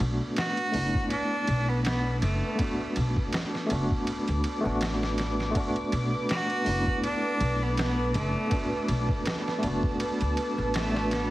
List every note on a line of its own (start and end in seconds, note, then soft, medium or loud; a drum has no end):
0.00 0.18 B1 loud
0.00 0.72 A3 medium
0.00 0.74 B3 medium
0.00 11.30 B3 medium
0.00 0.75 D4 medium
0.00 2.64 F#4 loud
0.00 11.30 B4 medium
0.00 11.30 A5 medium
0.00 11.30 D6 medium
0.00 ride medium
0.36 1.07 F#4 loud
0.36 snare loud
0.36 ride medium
0.57 ride soft
0.72 0.92 F#1 medium
0.72 0.84 A3 medium
0.72 0.84 B3 medium
0.72 0.85 D4 medium
0.72 open hi-hat medium
0.76 0.86 E4 medium
0.94 kick medium
1.10 1.70 D4 loud
1.10 ride medium
1.47 2.19 B1 loud
1.47 ride medium
1.69 1.84 B3 medium
1.84 2.19 B3 medium
1.84 snare loud
1.84 ride medium
2.22 2.40 F#1 medium
2.22 2.92 A3 medium
2.22 ride medium
2.55 3.64 A3 medium
2.55 3.66 B3 medium
2.55 kick loud
2.55 ride medium
2.61 3.67 D4 medium
2.61 3.69 F#4 medium
2.96 3.14 B1 loud
2.96 ride medium
3.16 kick medium
3.33 snare loud
3.33 ride medium
3.55 snare soft
3.66 4.58 A3 medium
3.66 4.59 B3 medium
3.66 ride medium
3.71 3.89 F#1 medium
3.71 4.61 D4 medium
3.71 4.62 F#4 medium
3.91 kick medium
4.07 ride medium
4.28 4.43 D2 medium
4.28 ride soft
4.44 ride medium
4.60 5.49 A3 loud
4.60 5.51 B3 medium
4.65 5.52 A1 medium
4.65 5.52 D4 medium
4.69 5.54 F#4 loud
4.81 snare loud
4.81 ride medium
5.03 snare soft
5.18 snare soft
5.18 ride medium
5.40 snare soft
5.51 6.60 A3 medium
5.51 6.62 B3 medium
5.55 6.63 D4 medium
5.55 kick loud
5.55 ride medium
5.60 6.65 F#4 loud
5.76 ride soft
5.92 6.11 B1 loud
5.92 ride medium
6.29 7.00 F#4 loud
6.29 snare loud
6.29 ride medium
6.50 ride soft
6.64 6.85 F#1 medium
6.64 6.76 A3 medium
6.64 6.77 B3 medium
6.64 6.78 D4 medium
6.64 open hi-hat medium
6.69 6.78 E4 medium
6.87 kick medium
7.04 7.64 D4 loud
7.04 ride medium
7.40 8.11 B1 loud
7.40 ride medium
7.63 7.78 B3 medium
7.77 8.13 B3 medium
7.77 snare loud
7.77 ride medium
8.14 8.33 F#1 loud
8.14 8.85 A3 medium
8.14 ride medium
8.47 9.56 A3 medium
8.47 9.58 B3 medium
8.51 9.59 D4 medium
8.51 kick loud
8.51 ride medium
8.56 9.61 F#4 medium
8.88 9.07 B1 medium
8.88 ride medium
9.09 kick medium
9.25 snare loud
9.25 ride medium
9.48 snare soft
9.58 10.50 A3 medium
9.58 10.52 B3 medium
9.63 9.81 F#1 medium
9.63 10.53 D4 medium
9.63 ride medium
9.67 10.55 F#4 medium
9.83 kick medium
10.00 ride medium
10.21 10.35 D2 medium
10.21 ride soft
10.37 ride medium
10.58 11.30 A1 medium
10.74 11.13 A3 medium
10.74 snare loud
10.74 ride medium
10.92 11.30 A3 medium
10.92 11.30 B3 medium
10.92 11.30 D4 medium
10.96 11.30 F#4 medium
10.96 snare soft
11.11 11.30 B3 medium
11.11 snare soft
11.11 ride medium